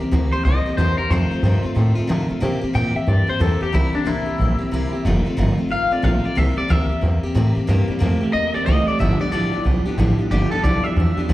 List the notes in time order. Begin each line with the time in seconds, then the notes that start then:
0.00 A#3 C4 G4, muted upright bass stroke
0.11 D2 C3 E3 A#3 C4 G4
0.32 A#3 C4 G4 C5, muted upright bass stroke
0.43 C2 E3 A#3 C4 G4 D#5
0.65 A#3 C4 G4, muted upright bass stroke
0.77 E2 C3 E3 A#3 C4 G4 C5
0.98 A#3 C4 G4 A#4, muted upright bass stroke
1.10 F2 C3 D#3 A3 C4 F4 C5
1.31 D#3 A3 C4 F4, muted upright bass stroke
1.43 F2 G2 C3 D#3 A3 C4 F4
1.63 D#3 A3 C4 F4, muted upright bass stroke
1.75 A2 D#3 A3 C4 F4
1.95 D#3 A3 C4 F4, muted upright bass stroke
2.07 F2 C3 D3 D#3 A3 C4 F4
2.28 D#3 A3 C4 F4, muted upright bass stroke
2.40 C3 E3 A#3 C4 G4
2.61 A#3 C4 G4, muted upright bass stroke
2.73 A#2 C3 E3 A#3 C4 G4 G5
2.95 A#3 C4 G4 E5, muted upright bass stroke
3.06 G2 E3 A#3 C4 G4 D5
3.27 A#3 C4 G4 C5, muted upright bass stroke
3.39 E2 C3 E3 A#3 C4 G4 A4
3.60 A#3 C4 G4, muted upright bass stroke
3.72 C2 C3 E3 A#3 C4 E4 G4
3.93 A#3 C4 D4 G4, muted upright bass stroke
4.05 A1 C3 E3 A#3 C4 E4 G4
4.26 A#3 C4 G4, muted upright bass stroke
4.38 A#1 E3 A#3 C4 G4
4.58 A#3 C4 G4, muted upright bass stroke
4.71 C2 C3 E3 A#3 C4 G4
4.93 A#3 C4 G4, muted upright bass stroke
5.05 F1 F2 C3 D#3 A3 C4 F4
5.25 D#3 A3 C4 F4, muted upright bass stroke
5.37 G1 F2 C3 D#3 A3 C4 F4
5.57 D#3 A3 C4 F4, muted upright bass stroke
5.69 A1 D#3 A3 C4 F4 F5
5.91 D#3 A3 C4 F4 D5, muted upright bass stroke
6.02 A#1 F2 C3 D#3 A3 C4 F4 F5
6.24 D#3 A3 C4 F4 D5, muted upright bass stroke
6.35 C2 C3 E3 A#3 C4 G4 E5
6.56 A#3 C4 G4 D5, muted upright bass stroke
6.69 D2 C3 E3 A#3 C4 G4 E5
6.89 A#3 C4 G4, muted upright bass stroke
7.01 E2 E3 A#3 C4 G4
7.23 A#3 C4 G4, muted upright bass stroke
7.35 A2 C3 E3 A#3 C4 G4
7.55 A#3 C4 G4, muted upright bass stroke
7.67 G2 C3 E3 G3 A#3 C4 G4
7.88 C3 G3 A#3 C4 G4, muted upright bass stroke
7.99 F2 C3 E3 A3 A#3 C4 G4
8.21 C3 A3 A#3 C4 G4, muted upright bass stroke
8.32 E2 C3 E3 A#3 C4 D#5
8.54 C3 A#3 C4 G4 D5, muted upright bass stroke
8.66 C2 C3 E3 A3 A#3 C4 G4 D#5
8.87 C3 A3 A#3 C4 G4 D5, muted upright bass stroke
8.99 G1 G2 D3 F3 B3 D4 G4 E5
9.19 G2 D3 F3 B3 D4 G4 D5, muted upright bass stroke
9.31 A1 G2 D3 E3 F3 B3 D4 G4 D5
9.52 G2 E3 F3 B3 D4 G4, muted upright bass stroke
9.64 B1 G2 F3 B3 D4 G4
9.85 G2 F3 B3 D4 G4, muted upright bass stroke
9.98 A1 G2 D3 E3 F3 B3 D4 G4
10.18 G2 E3 F3 B3 D4 G4, muted upright bass stroke
10.31 G1 G2 D3 F3 B3 D4 G4
10.51 G2 D3 F3 B3 D4 G4 A4, muted upright bass stroke
10.63 B1 G2 D3 E3 F3 B3 D4 G4 D5
10.84 G2 E3 B3 D4 G4 E5
10.88 F3
10.96 E2 G2 F3 B3 D4 G4
11.17 G2 F3 B3 D4 G4, muted upright bass stroke
11.29 D2 G2 D3 E3 F3 B3